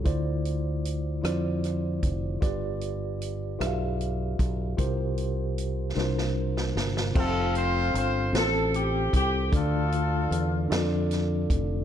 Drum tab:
CC |------------|------------|------------|x-----------|
HH |x-x-x-x-x-x-|x-x-x-x-x-x-|x-x-x-------|--x-x-x-x-x-|
SD |------r-r---|------r-----|------oo-ooo|------o-----|
BD |o---------o-|o---------o-|o-----------|o---------o-|

CC |------------|
HH |x-x-x-x-x-x-|
SD |------o-o---|
BD |o---------o-|